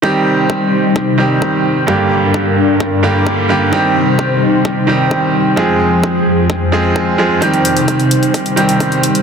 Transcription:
0.02 analog synth pad C3 G3 D#4 C5, grand piano D#3 G3 C4 G4, kick
0.50 kick
0.96 kick
1.18 grand piano D#3 G3 C4 G4
1.42 kick
1.87 grand piano G2 D3 G3 A#3 G4, analog synth pad G2 G3 D4 A#4, kick
2.34 kick
2.80 kick
3.03 grand piano G2 D3 G3 A#3 G4
3.27 kick
3.49 grand piano D3 G3 A#3 G4
3.72 analog synth pad C3 D#4 C5, grand piano D#3 G3 C4 G4, kick
4.19 kick
4.65 kick
4.87 grand piano D#3 G3 C4 G4
5.11 kick
5.56 analog synth pad F2 F3 G#4 C5, grand piano F3 G#3 C4 G#4, kick
6.03 kick
6.50 kick
6.72 grand piano F3 G#3 C4 G#4
6.96 kick
7.18 grand piano F3 G#3 C4 G#4
7.41 analog synth pad C3 G3 D#4, grand piano D#3 G3 C4 G4, kick, closed hi-hat
7.54 closed hi-hat
7.65 closed hi-hat
7.77 closed hi-hat
7.88 kick, closed hi-hat
8.00 closed hi-hat
8.11 closed hi-hat
8.23 closed hi-hat
8.34 kick, closed hi-hat
8.46 closed hi-hat
8.56 grand piano D#3 G3 C4 G4, closed hi-hat
8.69 closed hi-hat
8.80 kick, closed hi-hat
8.92 closed hi-hat
9.03 closed hi-hat
9.15 closed hi-hat

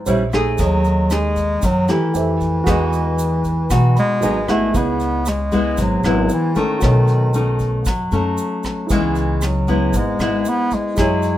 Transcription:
0.06 upright bass A#1, nylon-string guitar G3 C#4 E4, grand piano C5 C#5 E5, closed hi-hat, shaker
0.32 nylon-string guitar A3 D#4 G#4, kick, cross-stick, closed hi-hat, shaker
0.57 upright bass D#2, nylon-string guitar D#3, bass clarinet F#3, grand piano G#4, kick, closed hi-hat, shaker
0.61 grand piano C#5 D#5
0.84 closed hi-hat, shaker
1.10 bass clarinet G#3, nylon-string guitar D#4 G#4, cross-stick, closed hi-hat, shaker
1.36 kick, closed hi-hat, shaker
1.62 upright bass F#2, nylon-string guitar D#3, bass clarinet F#3, kick, closed hi-hat, shaker
1.88 bass clarinet E3, nylon-string guitar A3 E4 G4, cross-stick, closed hi-hat, shaker
2.14 upright bass F2, grand piano G4 A4 C5 E5, closed hi-hat, shaker
2.41 kick, closed hi-hat, shaker
2.64 upright bass E2, nylon-string guitar E3 G#3 D#4 F#4, grand piano F#4 G#4, kick, cross-stick, closed hi-hat, shaker
2.68 grand piano B4 D#5
2.93 closed hi-hat, shaker
3.19 closed hi-hat, shaker
3.44 kick, closed hi-hat, shaker
3.70 upright bass B1, nylon-string guitar B2 G#3 D#4 F#4, kick, cross-stick, closed hi-hat, shaker
3.96 bass clarinet G#3, grand piano B5, closed hi-hat, shaker
4.21 upright bass G#1, nylon-string guitar F#3 B3 D#4, grand piano F#4 G#4 B4 D#5 G#5, closed hi-hat, shaker
4.48 bass clarinet A3, nylon-string guitar B3 E4 G#4, grand piano F#5, kick, cross-stick, closed hi-hat, shaker
4.71 grand piano E4 G#4, shaker
4.75 upright bass C#2, nylon-string guitar C#3, bass clarinet B3, grand piano B4 D#5, kick, closed hi-hat
5.00 closed hi-hat, shaker
5.26 bass clarinet G#3, cross-stick, closed hi-hat, shaker
5.52 nylon-string guitar G#3 B3 E4, kick, closed hi-hat, shaker
5.77 upright bass G#1, nylon-string guitar G#2, bass clarinet F#3, kick, closed hi-hat, shaker
6.03 upright bass G#1, nylon-string guitar G#3 B3 E4, cross-stick, closed hi-hat, shaker
6.29 closed hi-hat, shaker
6.33 bass clarinet E3
6.55 bass clarinet D#3, nylon-string guitar A3 C#4 D#4, kick, closed hi-hat, shaker
6.79 upright bass B1, nylon-string guitar B2, grand piano F#4 A4 C#5, kick, cross-stick, closed hi-hat, shaker
6.85 grand piano D#5
7.08 closed hi-hat, shaker
7.34 nylon-string guitar A3 C#4 D#4, closed hi-hat, shaker
7.59 kick, closed hi-hat, shaker
7.85 upright bass F#2, nylon-string guitar F#3, kick, cross-stick, closed hi-hat, shaker
8.12 upright bass F#2, nylon-string guitar A3 C#4 D#4, closed hi-hat, shaker
8.38 closed hi-hat, shaker
8.63 kick, cross-stick, closed hi-hat, shaker
8.87 upright bass C#2, grand piano E4 G#4 B4, kick, shaker
8.91 nylon-string guitar C#3 G#3 B3 E4, bass clarinet E3, grand piano D#5, closed hi-hat
9.15 closed hi-hat, shaker
9.41 bass clarinet F#3, cross-stick, closed hi-hat, shaker
9.68 nylon-string guitar G#3 B3 E4, kick, closed hi-hat, shaker
9.93 upright bass G#1, nylon-string guitar G#2, bass clarinet G#3, kick, closed hi-hat, shaker
10.19 upright bass G#1, nylon-string guitar G#3 B3 E4, cross-stick, closed hi-hat, shaker
10.45 closed hi-hat, shaker
10.49 bass clarinet B3
10.71 bass clarinet G#3, kick, closed hi-hat, shaker
10.95 upright bass F#2, nylon-string guitar F#3 E4 G#4, grand piano E4 G#4, kick, cross-stick, closed hi-hat, shaker
11.01 grand piano C#5
11.22 closed hi-hat, shaker

